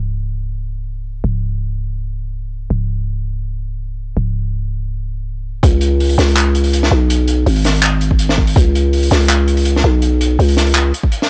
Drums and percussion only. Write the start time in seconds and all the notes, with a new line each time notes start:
5.63 kick, closed hi-hat
5.81 closed hi-hat
6.00 open hi-hat
6.09 open hi-hat
6.19 snare, closed hi-hat
6.28 open hi-hat
6.37 clap, closed hi-hat
6.55 closed hi-hat
6.64 open hi-hat
6.73 closed hi-hat
6.83 snare
7.10 closed hi-hat
7.28 closed hi-hat
7.46 open hi-hat
7.56 open hi-hat
7.64 snare, closed hi-hat
7.74 open hi-hat
7.82 clap, closed hi-hat
8.01 closed hi-hat
8.11 kick
8.19 closed hi-hat
8.29 snare
8.38 kick
8.47 open hi-hat
8.56 kick, closed hi-hat
8.75 closed hi-hat
8.93 open hi-hat
9.03 open hi-hat
9.11 snare, closed hi-hat
9.21 open hi-hat
9.29 clap, closed hi-hat
9.48 closed hi-hat
9.57 open hi-hat
9.65 closed hi-hat
9.76 snare
10.02 closed hi-hat
10.21 closed hi-hat
10.40 open hi-hat
10.49 open hi-hat
10.57 snare, closed hi-hat
10.67 open hi-hat
10.75 clap, closed hi-hat
10.94 closed hi-hat
11.03 kick
11.12 closed hi-hat
11.22 snare